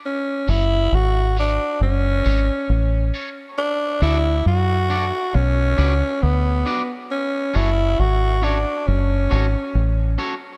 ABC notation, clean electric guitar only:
X:1
M:4/4
L:1/8
Q:"Swing 16ths" 1/4=68
K:F#m
V:1 name="Clean electric guitar"
z [CFAc] z [CFAc] z [CFAc] z [CFAc] | z [DFAd] z [DFAd] z [DFBd] z [DFBd] | z [CFAc] z [CFAc] z [CFAc] z [CFAc] |]